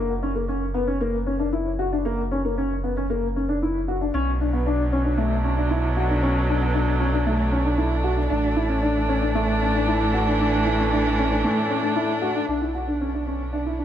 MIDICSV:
0, 0, Header, 1, 4, 480
1, 0, Start_track
1, 0, Key_signature, 2, "minor"
1, 0, Tempo, 521739
1, 1885, Time_signature, 4, 2, 24, 8
1, 12739, End_track
2, 0, Start_track
2, 0, Title_t, "Grand piano"
2, 0, Program_c, 0, 0
2, 0, Note_on_c, 0, 58, 88
2, 102, Note_off_c, 0, 58, 0
2, 207, Note_on_c, 0, 61, 74
2, 275, Note_off_c, 0, 61, 0
2, 324, Note_on_c, 0, 58, 68
2, 393, Note_off_c, 0, 58, 0
2, 444, Note_on_c, 0, 61, 73
2, 582, Note_off_c, 0, 61, 0
2, 682, Note_on_c, 0, 59, 78
2, 752, Note_off_c, 0, 59, 0
2, 802, Note_on_c, 0, 61, 75
2, 872, Note_off_c, 0, 61, 0
2, 926, Note_on_c, 0, 58, 87
2, 1063, Note_off_c, 0, 58, 0
2, 1163, Note_on_c, 0, 61, 72
2, 1232, Note_off_c, 0, 61, 0
2, 1280, Note_on_c, 0, 62, 73
2, 1351, Note_off_c, 0, 62, 0
2, 1404, Note_on_c, 0, 64, 74
2, 1542, Note_off_c, 0, 64, 0
2, 1646, Note_on_c, 0, 66, 79
2, 1714, Note_off_c, 0, 66, 0
2, 1770, Note_on_c, 0, 62, 72
2, 1837, Note_off_c, 0, 62, 0
2, 1887, Note_on_c, 0, 58, 92
2, 2024, Note_off_c, 0, 58, 0
2, 2129, Note_on_c, 0, 61, 73
2, 2196, Note_off_c, 0, 61, 0
2, 2251, Note_on_c, 0, 58, 73
2, 2318, Note_off_c, 0, 58, 0
2, 2370, Note_on_c, 0, 61, 74
2, 2506, Note_off_c, 0, 61, 0
2, 2609, Note_on_c, 0, 59, 73
2, 2676, Note_off_c, 0, 59, 0
2, 2730, Note_on_c, 0, 61, 73
2, 2798, Note_off_c, 0, 61, 0
2, 2850, Note_on_c, 0, 58, 84
2, 2986, Note_off_c, 0, 58, 0
2, 3093, Note_on_c, 0, 61, 69
2, 3159, Note_off_c, 0, 61, 0
2, 3207, Note_on_c, 0, 62, 70
2, 3275, Note_off_c, 0, 62, 0
2, 3335, Note_on_c, 0, 64, 70
2, 3470, Note_off_c, 0, 64, 0
2, 3570, Note_on_c, 0, 66, 70
2, 3637, Note_off_c, 0, 66, 0
2, 3690, Note_on_c, 0, 62, 67
2, 3757, Note_off_c, 0, 62, 0
2, 3809, Note_on_c, 0, 61, 94
2, 3946, Note_off_c, 0, 61, 0
2, 4053, Note_on_c, 0, 62, 70
2, 4120, Note_off_c, 0, 62, 0
2, 4169, Note_on_c, 0, 59, 73
2, 4237, Note_off_c, 0, 59, 0
2, 4290, Note_on_c, 0, 62, 80
2, 4426, Note_off_c, 0, 62, 0
2, 4529, Note_on_c, 0, 61, 79
2, 4597, Note_off_c, 0, 61, 0
2, 4644, Note_on_c, 0, 62, 75
2, 4713, Note_off_c, 0, 62, 0
2, 4762, Note_on_c, 0, 57, 81
2, 4900, Note_off_c, 0, 57, 0
2, 5003, Note_on_c, 0, 61, 69
2, 5073, Note_off_c, 0, 61, 0
2, 5123, Note_on_c, 0, 62, 69
2, 5192, Note_off_c, 0, 62, 0
2, 5249, Note_on_c, 0, 64, 73
2, 5385, Note_off_c, 0, 64, 0
2, 5488, Note_on_c, 0, 66, 76
2, 5556, Note_off_c, 0, 66, 0
2, 5608, Note_on_c, 0, 62, 65
2, 5676, Note_off_c, 0, 62, 0
2, 5725, Note_on_c, 0, 61, 93
2, 5863, Note_off_c, 0, 61, 0
2, 5968, Note_on_c, 0, 62, 70
2, 6036, Note_off_c, 0, 62, 0
2, 6087, Note_on_c, 0, 59, 73
2, 6155, Note_off_c, 0, 59, 0
2, 6203, Note_on_c, 0, 62, 79
2, 6341, Note_off_c, 0, 62, 0
2, 6441, Note_on_c, 0, 61, 79
2, 6511, Note_off_c, 0, 61, 0
2, 6560, Note_on_c, 0, 62, 78
2, 6630, Note_off_c, 0, 62, 0
2, 6682, Note_on_c, 0, 57, 87
2, 6821, Note_off_c, 0, 57, 0
2, 6919, Note_on_c, 0, 61, 71
2, 6989, Note_off_c, 0, 61, 0
2, 7037, Note_on_c, 0, 62, 69
2, 7108, Note_off_c, 0, 62, 0
2, 7155, Note_on_c, 0, 64, 76
2, 7295, Note_off_c, 0, 64, 0
2, 7395, Note_on_c, 0, 66, 78
2, 7467, Note_off_c, 0, 66, 0
2, 7512, Note_on_c, 0, 62, 72
2, 7585, Note_off_c, 0, 62, 0
2, 7637, Note_on_c, 0, 62, 97
2, 7777, Note_off_c, 0, 62, 0
2, 7877, Note_on_c, 0, 64, 80
2, 7948, Note_off_c, 0, 64, 0
2, 7993, Note_on_c, 0, 61, 72
2, 8065, Note_off_c, 0, 61, 0
2, 8119, Note_on_c, 0, 62, 78
2, 8258, Note_off_c, 0, 62, 0
2, 8360, Note_on_c, 0, 61, 81
2, 8430, Note_off_c, 0, 61, 0
2, 8481, Note_on_c, 0, 62, 77
2, 8551, Note_off_c, 0, 62, 0
2, 8602, Note_on_c, 0, 57, 93
2, 8741, Note_off_c, 0, 57, 0
2, 8846, Note_on_c, 0, 61, 67
2, 8914, Note_off_c, 0, 61, 0
2, 8966, Note_on_c, 0, 62, 78
2, 9034, Note_off_c, 0, 62, 0
2, 9087, Note_on_c, 0, 64, 82
2, 9224, Note_off_c, 0, 64, 0
2, 9325, Note_on_c, 0, 66, 75
2, 9394, Note_off_c, 0, 66, 0
2, 9446, Note_on_c, 0, 62, 70
2, 9514, Note_off_c, 0, 62, 0
2, 9566, Note_on_c, 0, 62, 95
2, 9704, Note_off_c, 0, 62, 0
2, 9807, Note_on_c, 0, 64, 81
2, 9875, Note_off_c, 0, 64, 0
2, 9930, Note_on_c, 0, 61, 73
2, 9997, Note_off_c, 0, 61, 0
2, 10050, Note_on_c, 0, 62, 85
2, 10186, Note_off_c, 0, 62, 0
2, 10291, Note_on_c, 0, 61, 82
2, 10358, Note_off_c, 0, 61, 0
2, 10407, Note_on_c, 0, 62, 76
2, 10475, Note_off_c, 0, 62, 0
2, 10526, Note_on_c, 0, 57, 93
2, 10663, Note_off_c, 0, 57, 0
2, 10761, Note_on_c, 0, 61, 71
2, 10831, Note_off_c, 0, 61, 0
2, 10879, Note_on_c, 0, 62, 73
2, 10950, Note_off_c, 0, 62, 0
2, 11000, Note_on_c, 0, 64, 87
2, 11139, Note_off_c, 0, 64, 0
2, 11239, Note_on_c, 0, 66, 76
2, 11310, Note_off_c, 0, 66, 0
2, 11365, Note_on_c, 0, 62, 73
2, 11434, Note_off_c, 0, 62, 0
2, 11483, Note_on_c, 0, 62, 72
2, 11552, Note_off_c, 0, 62, 0
2, 11606, Note_on_c, 0, 64, 56
2, 11675, Note_off_c, 0, 64, 0
2, 11727, Note_on_c, 0, 66, 57
2, 11795, Note_off_c, 0, 66, 0
2, 11844, Note_on_c, 0, 62, 55
2, 11913, Note_off_c, 0, 62, 0
2, 11969, Note_on_c, 0, 61, 62
2, 12036, Note_off_c, 0, 61, 0
2, 12087, Note_on_c, 0, 62, 55
2, 12155, Note_off_c, 0, 62, 0
2, 12210, Note_on_c, 0, 61, 62
2, 12346, Note_off_c, 0, 61, 0
2, 12446, Note_on_c, 0, 62, 73
2, 12514, Note_off_c, 0, 62, 0
2, 12568, Note_on_c, 0, 64, 56
2, 12636, Note_off_c, 0, 64, 0
2, 12685, Note_on_c, 0, 62, 59
2, 12739, Note_off_c, 0, 62, 0
2, 12739, End_track
3, 0, Start_track
3, 0, Title_t, "String quartet"
3, 0, Program_c, 1, 48
3, 3813, Note_on_c, 1, 47, 75
3, 4017, Note_on_c, 1, 54, 74
3, 4737, Note_on_c, 1, 62, 81
3, 5490, Note_on_c, 1, 69, 70
3, 7646, Note_on_c, 1, 45, 89
3, 7649, Note_off_c, 1, 47, 0
3, 7650, Note_off_c, 1, 54, 0
3, 8229, Note_on_c, 1, 52, 80
3, 11485, Note_off_c, 1, 45, 0
3, 11486, Note_off_c, 1, 52, 0
3, 11491, Note_on_c, 1, 47, 62
3, 11742, Note_on_c, 1, 59, 71
3, 12739, Note_off_c, 1, 47, 0
3, 12739, Note_off_c, 1, 59, 0
3, 12739, Note_off_c, 1, 62, 0
3, 12739, Note_off_c, 1, 69, 0
3, 12739, End_track
4, 0, Start_track
4, 0, Title_t, "Sub bass"
4, 0, Program_c, 2, 38
4, 0, Note_on_c, 2, 30, 80
4, 3781, Note_off_c, 2, 30, 0
4, 3807, Note_on_c, 2, 35, 82
4, 7622, Note_off_c, 2, 35, 0
4, 7645, Note_on_c, 2, 33, 79
4, 10525, Note_off_c, 2, 33, 0
4, 11483, Note_on_c, 2, 35, 70
4, 12739, Note_off_c, 2, 35, 0
4, 12739, End_track
0, 0, End_of_file